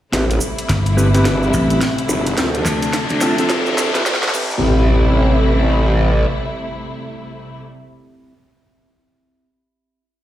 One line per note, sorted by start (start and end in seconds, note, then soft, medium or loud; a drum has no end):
0.12 0.40 A1 medium
0.12 2.35 C3 medium
0.12 2.35 G3 medium
0.12 4.30 A3 medium
0.12 0.24 C4 medium
0.12 2.35 E4 medium
0.12 0.24 E4 medium
0.12 0.24 G4 medium
0.12 0.24 B4 loud
0.12 kick loud
0.12 snare soft
0.12 closed hi-hat medium
0.12 riser medium
0.12 cabasa soft
0.31 closed hi-hat soft
0.31 cabasa soft
0.41 cabasa medium
0.58 closed hi-hat soft
0.58 cabasa soft
0.69 1.24 G1 medium
0.69 kick medium
0.69 snare soft
0.69 closed hi-hat medium
0.69 cabasa soft
0.86 closed hi-hat soft
0.86 cabasa soft
0.97 1.08 C4 medium
0.97 1.08 E4 medium
0.97 1.08 G4 medium
0.97 1.08 B4 loud
0.97 cabasa medium
1.14 2.35 C4 loud
1.14 2.35 E4 medium
1.14 2.35 G4 medium
1.14 2.35 B4 loud
1.14 closed hi-hat medium
1.14 cabasa soft
1.25 1.52 G1 medium
1.25 kick loud
1.25 snare medium
1.25 closed hi-hat medium
1.25 cabasa soft
1.43 cabasa soft
1.54 1.80 A1 medium
1.54 cabasa loud
1.70 closed hi-hat medium
1.70 cabasa soft
1.81 kick medium
1.81 snare medium
1.81 closed hi-hat medium
1.81 cabasa medium
1.98 closed hi-hat soft
1.98 cabasa soft
2.09 2.36 G1 medium
2.09 cabasa loud
2.26 closed hi-hat medium
2.26 cabasa soft
2.38 2.64 D2 medium
2.38 4.32 C3 medium
2.38 4.32 F3 medium
2.38 2.48 C4 medium
2.38 4.32 D4 medium
2.38 2.48 E4 medium
2.38 2.48 F4 medium
2.38 2.48 A4 medium
2.38 kick loud
2.38 snare medium
2.38 closed hi-hat medium
2.38 cabasa medium
2.54 closed hi-hat soft
2.54 cabasa soft
2.65 3.08 D2 loud
2.65 snare medium
2.65 cabasa medium
2.82 closed hi-hat medium
2.82 cabasa soft
2.93 kick medium
2.93 snare medium
2.93 closed hi-hat medium
2.93 cabasa medium
3.09 3.48 D2 medium
3.09 closed hi-hat soft
3.09 cabasa soft
3.21 3.35 C4 medium
3.21 3.35 E4 medium
3.21 3.35 F4 medium
3.21 3.35 A4 medium
3.21 snare medium
3.21 cabasa loud
3.38 3.91 C4 medium
3.38 3.91 E4 medium
3.38 3.91 F4 medium
3.38 3.91 A4 medium
3.38 closed hi-hat medium
3.38 cabasa soft
3.50 4.04 D2 medium
3.50 kick loud
3.50 snare medium
3.50 closed hi-hat medium
3.50 cabasa soft
3.66 cabasa soft
3.78 snare loud
3.78 cabasa loud
3.95 4.02 C4 medium
3.95 4.02 E4 medium
3.95 4.02 F4 medium
3.95 4.02 B4 loud
3.95 snare medium
3.95 closed hi-hat medium
3.95 cabasa soft
4.06 4.32 D2 loud
4.06 kick medium
4.06 snare loud
4.06 closed hi-hat medium
4.06 cabasa medium
4.15 snare medium
4.23 snare medium
4.23 closed hi-hat soft
4.23 cabasa soft
4.28 snare medium
4.33 6.26 A1 loud
4.33 7.62 C3 medium
4.33 7.62 G3 medium
4.33 7.62 A3 medium
4.33 8.33 C4 medium
4.33 7.62 E4 medium
4.33 8.33 E4 medium
4.33 8.33 G4 medium
4.33 8.33 B4 loud
4.33 kick loud
4.33 crash medium
4.33 impact medium
4.33 cabasa loud
4.51 cabasa soft